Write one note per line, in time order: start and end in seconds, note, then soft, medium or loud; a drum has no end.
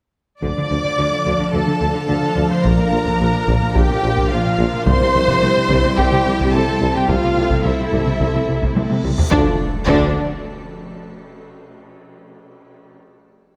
0.41 0.48 D2 soft
0.41 0.48 D3 soft
0.41 4.83 F3 soft
0.41 4.83 F3 medium
0.41 4.83 D4 soft
0.41 4.83 D4 medium
0.41 2.61 A4 medium
0.41 1.49 D5 medium
0.41 1.50 D5 medium
0.41 4.83 F5 medium
0.41 1.49 D6 medium
0.41 taiko medium
0.57 0.62 D3 soft
0.70 0.76 D2 soft
0.70 0.75 D3 soft
0.84 0.90 D3 medium
0.98 1.04 D2 soft
0.98 1.03 D3 soft
1.12 1.18 D3 soft
1.26 1.31 D2 medium
1.26 1.32 D2 soft
1.26 1.31 D3 soft
1.26 taiko soft
1.39 1.45 D3 soft
1.52 1.59 D2 soft
1.52 1.59 D2 medium
1.52 1.58 D3 medium
1.52 2.07 A4 medium
1.52 2.08 A4 medium
1.52 2.07 A5 medium
1.66 1.72 D3 soft
1.80 1.87 D2 soft
1.80 1.86 D3 soft
1.94 2.00 D3 medium
2.08 2.14 D2 soft
2.08 2.14 D3 soft
2.08 2.50 A4 soft
2.08 2.50 A4 medium
2.08 2.49 A5 medium
2.22 2.27 D3 soft
2.35 2.42 D2 medium
2.35 2.41 D3 medium
2.50 2.55 D3 soft
2.50 2.64 C5 soft
2.50 2.64 C6 medium
2.63 2.70 A#1 soft
2.63 2.70 A#1 medium
2.63 2.69 A#2 medium
2.63 3.75 A#4 soft
2.63 4.87 A#4 medium
2.63 3.76 A#4 medium
2.63 3.75 A#5 medium
2.63 taiko medium
2.77 2.83 A#2 soft
2.91 2.98 A#1 soft
2.91 2.97 A#2 soft
3.05 3.11 A#2 medium
3.05 taiko medium
3.19 3.25 A#1 soft
3.19 3.25 A#2 soft
3.33 3.39 A#2 soft
3.47 3.53 A#1 medium
3.47 3.53 A#2 medium
3.47 taiko medium
3.61 3.67 A#2 soft
3.75 3.81 A#1 medium
3.75 3.81 A#2 medium
3.75 4.30 G4 medium
3.75 4.32 G4 medium
3.75 4.31 G5 medium
3.75 taiko medium
3.90 3.95 A#2 soft
4.03 4.08 A#1 medium
4.03 4.09 A#1 medium
4.03 4.09 A#2 soft
4.17 4.23 A#2 medium
4.17 taiko medium
4.29 4.36 A#1 medium
4.29 4.37 A#1 medium
4.29 4.37 A#2 soft
4.29 4.86 F4 medium
4.29 4.87 F4 medium
4.29 4.86 F5 medium
4.45 4.51 A#2 soft
4.58 4.64 A#1 medium
4.58 4.64 A#2 medium
4.73 4.79 A#2 soft
4.85 4.92 C2 medium
4.85 4.93 C3 medium
4.85 6.92 G3 medium
4.85 9.32 G3 medium
4.85 9.31 C4 medium
4.85 6.92 E4 medium
4.85 7.09 G4 medium
4.85 5.95 C5 medium
4.85 9.31 C5 medium
4.85 5.96 C5 medium
4.85 5.95 C6 loud
4.85 taiko medium
5.01 5.07 C3 medium
5.13 5.19 C2 medium
5.13 5.20 C2 medium
5.13 5.21 C3 soft
5.28 5.34 C3 medium
5.28 taiko medium
5.42 5.47 C2 medium
5.42 5.48 C2 medium
5.42 5.48 C3 medium
5.56 5.62 C3 medium
5.69 5.75 C2 medium
5.69 5.76 C3 medium
5.69 taiko medium
5.84 5.90 C3 medium
5.96 6.04 C2 medium
5.96 6.04 C3 medium
5.96 6.53 G4 medium
5.96 6.52 G4 medium
5.96 6.53 G5 medium
5.96 taiko medium
6.12 6.18 C3 medium
6.25 6.31 C2 medium
6.25 6.32 C3 medium
6.40 6.45 C3 medium
6.40 taiko medium
6.53 6.59 C2 medium
6.53 6.60 C3 medium
6.53 6.94 A4 medium
6.53 6.95 A4 medium
6.53 6.95 A5 medium
6.68 6.74 C3 medium
6.80 6.86 C2 medium
6.80 6.87 C2 medium
6.80 6.87 C3 medium
6.95 7.01 C3 soft
6.95 7.09 G4 medium
6.95 7.10 G5 medium
7.08 7.14 C2 medium
7.08 7.15 C2 medium
7.08 7.14 C3 medium
7.08 8.99 A3 medium
7.08 7.63 F4 medium
7.08 7.65 F4 medium
7.08 9.31 A4 medium
7.08 8.99 A4 medium
7.08 7.64 F5 medium
7.08 taiko medium
7.08 reverse cymbal medium
7.23 7.28 C3 soft
7.37 7.42 C2 soft
7.37 7.43 C2 soft
7.37 7.42 C3 soft
7.51 7.56 C3 medium
7.51 taiko medium
7.64 7.70 C2 soft
7.64 7.71 C2 soft
7.64 7.70 C3 soft
7.64 9.00 E4 soft
7.64 9.01 E4 medium
7.64 9.04 E5 medium
7.79 7.84 C3 soft
7.92 7.98 C2 medium
7.92 7.98 C3 medium
7.92 taiko medium
8.06 8.12 C3 soft
8.06 taiko mid soft
8.20 8.25 C2 medium
8.20 8.26 C2 medium
8.20 8.26 C3 medium
8.20 taiko medium
8.34 8.40 C3 soft
8.48 8.53 C2 soft
8.48 8.54 C2 soft
8.48 8.54 C3 soft
8.62 8.67 C3 medium
8.62 taiko medium
8.75 8.81 C2 soft
8.75 8.82 C2 soft
8.75 8.81 C3 soft
8.75 taiko high medium
8.90 8.95 C3 soft
8.90 taiko high medium
9.04 9.09 C2 medium
9.04 9.10 C2 medium
9.04 9.09 C3 medium
9.04 taiko mid medium
9.18 9.23 C3 soft
9.18 taiko low medium
9.30 9.47 D2 medium
9.30 9.43 D2 medium
9.30 9.47 D3 medium
9.30 9.56 A3 medium
9.30 9.47 D4 medium
9.30 9.55 F4 medium
9.30 9.46 D5 medium
9.30 taiko loud
9.30 impact medium
9.86 10.18 D2 medium
9.86 10.10 D2 medium
9.86 10.18 D3 medium
9.86 10.18 D4 medium
9.86 10.19 D4 medium
9.86 10.17 D5 medium
9.86 taiko loud